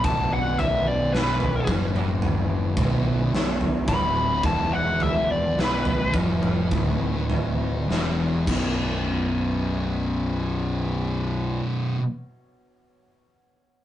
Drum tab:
CC |----------------|--------------x-|----------------|
SD |----o-------o---|----o-------o---|----------------|
T2 |------oo------o-|------oo--------|----------------|
FT |o-o--o--o-o--o--|o-o--o--o-o-----|----------------|
BD |o-----o---o---o-|o-----o-o-----o-|----------------|